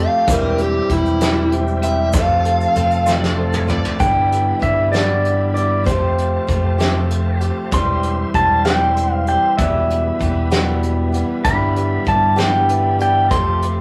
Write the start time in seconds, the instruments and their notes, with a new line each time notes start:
Already playing: clean electric guitar F3 A3 C4 G4, tonewheel organ G4 F5 G5 A5, steel-string acoustic guitar G4
0.00 steel-string acoustic guitar A3 C4, grand piano F4 G4 A4, electric slide guitar F5
0.27 picked electric bass E1, steel-string acoustic guitar E3 G3 C4 G4, tonewheel organ C4 G4 E5, grand piano E4 G4 C5, kick, closed hi-hat, shaker
0.31 electric slide guitar A#4
0.58 grand piano E4 G4 C5, electric slide guitar G4, closed hi-hat
0.89 picked electric bass E1, steel-string acoustic guitar E3 G3 C4 G4, grand piano E4 G4 C5, electric slide guitar E4, kick, closed hi-hat
1.06 shaker
1.21 steel-string acoustic guitar E3 G3 C4 G4, snare, closed hi-hat, shaker
1.51 grand piano E4 G4 C5, closed hi-hat
1.67 shaker
1.82 steel-string acoustic guitar G3 C4 G4, grand piano E4 G4 B4, electric slide guitar E5, closed hi-hat
2.13 picked electric bass F1, steel-string acoustic guitar F2 C3 F3 A3 C4 F4, tonewheel organ C4 A4 F5 A5, grand piano F4 A4 C5, electric slide guitar F5, kick, closed hi-hat, shaker
2.44 grand piano F4 A4 C5, closed hi-hat
2.61 shaker
2.75 picked electric bass F1, steel-string acoustic guitar F3 A3 C4 F4, grand piano F4 A4 C5, closed hi-hat, shaker
2.91 shaker
3.06 steel-string acoustic guitar F2 C3 F3 A3 C4 F4, snare, shaker
3.15 electric slide guitar D5
3.24 snare
3.38 grand piano F4 A4 C5
3.53 mid tom, shaker
3.67 steel-string acoustic guitar F3 A3 C4 F4, grand piano F4 A4 B4, electric slide guitar D5, mid tom, shaker
3.85 floor tom, shaker
3.99 picked electric bass G1, steel-string acoustic guitar G2 D3 E3 G3 B3 E4, tonewheel organ G4 D5 E5 B5, clean electric guitar G4, pedal steel guitar G5, kick, closed hi-hat
4.32 closed hi-hat
4.60 picked electric bass G1, steel-string acoustic guitar E3 G3 B3 E4, pedal steel guitar E5, kick, closed hi-hat
4.92 steel-string acoustic guitar G2 D3 E3 G3 B3 E4, clean electric guitar G4, pedal steel guitar D5, snare, closed hi-hat
5.25 closed hi-hat
5.54 steel-string acoustic guitar E3 G3 B3 E4, pedal steel guitar D5, closed hi-hat
5.84 picked electric bass F1, steel-string acoustic guitar F3 A3 C4 G4, tonewheel organ C5 F5 A5, pedal steel guitar C5, kick, closed hi-hat
6.18 closed hi-hat
6.47 picked electric bass F1, steel-string acoustic guitar F3 A3 C4 G4, kick, closed hi-hat
6.78 steel-string acoustic guitar F3 A3 C4 G4, snare, closed hi-hat
7.10 closed hi-hat
7.41 steel-string acoustic guitar A3 C4 G4, closed hi-hat
7.71 picked electric bass E1, steel-string acoustic guitar E3 G3 C4 G4, tonewheel organ E5 C6, pedal steel guitar C6, kick, closed hi-hat
8.03 closed hi-hat
8.34 picked electric bass E1, steel-string acoustic guitar E3 G3 C4 G4, pedal steel guitar A5, kick, closed hi-hat
8.65 steel-string acoustic guitar E3 G3 C4 G4, pedal steel guitar G5, snare, closed hi-hat
8.97 closed hi-hat
9.14 pedal steel guitar F5
9.27 steel-string acoustic guitar G3 C4 G4, pedal steel guitar G5, closed hi-hat
9.57 picked electric bass E1, steel-string acoustic guitar E2 B2 E3 G3 B3 G4, tonewheel organ B4 E5 B5, pedal steel guitar E5, kick, closed hi-hat
9.90 closed hi-hat
10.19 picked electric bass E1, steel-string acoustic guitar E3 G3 B3 G4, kick, closed hi-hat
10.51 steel-string acoustic guitar E2 B2 E3 G3 B3 G4, snare, closed hi-hat
10.83 closed hi-hat
11.12 steel-string acoustic guitar E3 G3 B3 G4, closed hi-hat
11.44 picked electric bass G1, steel-string acoustic guitar G2 D3 E3 G3 B3 G4, grand piano E4 G4 B4, tonewheel organ D5, pedal steel guitar B5, kick, closed hi-hat
11.76 grand piano E4 G4 B4, closed hi-hat
12.05 picked electric bass G1, steel-string acoustic guitar E3 G3 B3 G4, grand piano E4 G4 D5, pedal steel guitar A5, kick, closed hi-hat
12.36 steel-string acoustic guitar G2 D3 E3 G3 B3 G4, pedal steel guitar G5, snare, closed hi-hat
12.68 grand piano E4 G4 B4, closed hi-hat
12.99 steel-string acoustic guitar E3 G3 B3 G4, grand piano E4 G4 D5, pedal steel guitar G5, closed hi-hat
13.28 picked electric bass F1, steel-string acoustic guitar F3 A3 C4 G4, tonewheel organ C4 F5 A5, grand piano F4 G4 A4, pedal steel guitar C6, kick, closed hi-hat
13.62 grand piano F4 G4 B4, closed hi-hat